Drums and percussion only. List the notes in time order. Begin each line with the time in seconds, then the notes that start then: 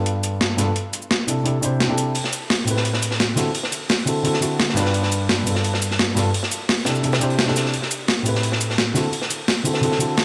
0.06 closed hi-hat
0.24 closed hi-hat, shaker
0.41 snare, closed hi-hat
0.58 snare, closed hi-hat, shaker
0.76 closed hi-hat
0.93 closed hi-hat, shaker
1.02 shaker
1.11 snare, closed hi-hat
1.28 closed hi-hat, shaker
1.46 closed hi-hat
1.63 closed hi-hat, shaker
1.80 snare, closed hi-hat
1.98 closed hi-hat, shaker
2.15 closed hi-hat
2.24 snare
2.32 closed hi-hat, shaker
2.50 snare, closed hi-hat
2.68 closed hi-hat, shaker
2.77 snare
2.85 closed hi-hat
2.93 snare
3.02 closed hi-hat, shaker
3.11 snare
3.20 snare, closed hi-hat
3.37 snare, closed hi-hat, shaker
3.55 closed hi-hat
3.63 snare
3.72 closed hi-hat, shaker
3.89 snare, closed hi-hat
3.98 closed hi-hat
4.07 closed hi-hat, shaker
4.25 closed hi-hat
4.33 snare
4.42 closed hi-hat, shaker
4.60 snare, closed hi-hat
4.69 snare
4.76 snare, closed hi-hat, shaker
4.85 snare
4.94 closed hi-hat
5.03 snare
5.11 closed hi-hat, shaker
5.29 snare, closed hi-hat
5.47 closed hi-hat, shaker
5.55 snare
5.64 closed hi-hat
5.74 snare
5.82 closed hi-hat, shaker
5.91 snare
5.99 snare, closed hi-hat
6.17 snare, closed hi-hat, shaker
6.34 closed hi-hat
6.43 snare
6.51 closed hi-hat, shaker
6.69 snare, closed hi-hat
6.77 closed hi-hat
6.85 snare, closed hi-hat, shaker
6.95 shaker
7.03 closed hi-hat
7.12 snare, closed hi-hat
7.21 closed hi-hat, shaker
7.30 closed hi-hat
7.39 snare, closed hi-hat
7.47 snare
7.56 snare, closed hi-hat, shaker
7.65 snare
7.73 closed hi-hat
7.82 snare
7.91 closed hi-hat, shaker
8.08 snare, closed hi-hat
8.26 closed hi-hat, shaker
8.35 snare
8.43 closed hi-hat
8.52 snare
8.61 closed hi-hat, shaker
8.70 snare
8.78 snare, closed hi-hat
8.96 snare, closed hi-hat, shaker
9.13 closed hi-hat
9.22 snare
9.30 closed hi-hat, shaker
9.48 snare, closed hi-hat
9.57 closed hi-hat
9.65 closed hi-hat, shaker
9.74 snare
9.83 closed hi-hat
9.92 snare
10.00 closed hi-hat, shaker
10.17 snare, closed hi-hat